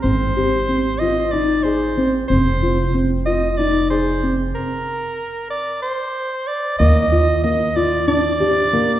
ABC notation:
X:1
M:7/8
L:1/16
Q:1/4=93
K:Eb
V:1 name="Soprano saxophone"
c6 e2 d2 c3 z | c4 z2 e2 d2 c3 z | B6 d2 c4 d2 | e4 e2 d2 d6 |]
V:2 name="Felt piano"
C2 G2 C2 F2 E2 A2 C2 | C2 F2 C2 F2 E2 A2 C2 | z12 z2 | B,2 F2 B,2 F2 D2 G2 B,2 |]
V:3 name="Upright bass" clef=bass
A,,,12- A,,,2 | F,,,12- F,,,2 | z12 z2 | E,,12- E,,2 |]